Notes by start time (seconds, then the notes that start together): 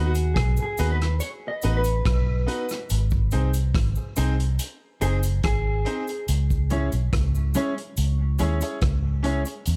Already playing: D#2 B3 D#4 F#4 B4
0.06 F#4
0.15 closed hi-hat, cabasa
0.34 B1 G#4, kick, cross-stick, closed hi-hat
0.57 F#4 B4, cabasa
0.62 G#4
0.77 D#2 B3 D#4 F#4 B4, closed hi-hat, cabasa
0.92 B4
1.02 cross-stick, closed hi-hat
1.20 C#5, closed hi-hat, cabasa
1.48 D#5
1.62 A1 B3 D#4 F#4 B4, closed hi-hat, cabasa
1.77 B4
1.84 closed hi-hat, cabasa
2.05 B1, kick, cross-stick, closed hi-hat
2.46 B3 D#4 F#4 B4, closed hi-hat
2.69 F#4 B4, cross-stick, closed hi-hat, cabasa
2.90 G#1, closed hi-hat, cabasa
3.10 kick, cabasa
3.31 C2 C4 D#4 G#4 C5, closed hi-hat, cabasa
3.54 closed hi-hat, cabasa
3.75 G#1, kick, cross-stick, closed hi-hat
3.95 G#4 C5, cabasa
4.16 C2 C4 D#4 G#4 C5, closed hi-hat, cabasa
4.40 closed hi-hat
4.59 closed hi-hat, cabasa
5.01 F#1 C4 D#4 G#4 C5, closed hi-hat, cabasa
5.23 closed hi-hat, cabasa
5.43 G#1 G#4, kick, cross-stick, closed hi-hat
5.85 C4 D#4 G#4 C5, closed hi-hat
6.07 G#4 C5, closed hi-hat, cabasa
6.28 C#2, closed hi-hat, cabasa
6.50 kick, cabasa
6.70 G#3 C#4 E4 G#4 C#5, closed hi-hat, cabasa
6.92 B1, closed hi-hat, cabasa
7.13 C#2, kick, cross-stick, closed hi-hat
7.35 cabasa
7.54 G#3 C#4 E4 G#4 C#5, closed hi-hat, cabasa
7.77 muted clean electric guitar stroke, closed hi-hat
7.97 C#2, closed hi-hat, cabasa
8.39 D#2 G#3 C#4 E4 G#4 C#5, closed hi-hat, cabasa
8.61 C#4 E4 G#4 C#5, closed hi-hat, cabasa
8.81 C#2, kick, cross-stick, closed hi-hat
9.23 G#3 C#4 E4 G#4 C#5, closed hi-hat
9.45 G#4 C#5, closed hi-hat, cabasa
9.66 E2, closed hi-hat, cabasa